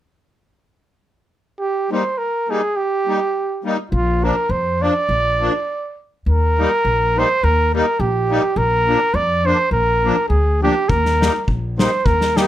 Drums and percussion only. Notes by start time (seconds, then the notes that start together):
10.89 kick
11.06 snare
11.22 snare
11.48 kick
11.79 snare
12.06 kick
12.21 snare
12.37 snare